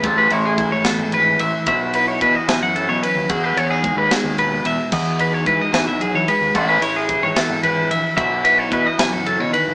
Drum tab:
CC |------|------|------|x-----|
RD |xxxxxx|xxxxxx|xxxxxx|-xxxxx|
SD |---o--|---o--|---o--|---o--|
BD |o-o---|o-o---|o-o---|o-o---|

CC |------|------|
RD |xxxxxx|xxxxxx|
SD |---o--|---o--|
BD |o-o---|o-o---|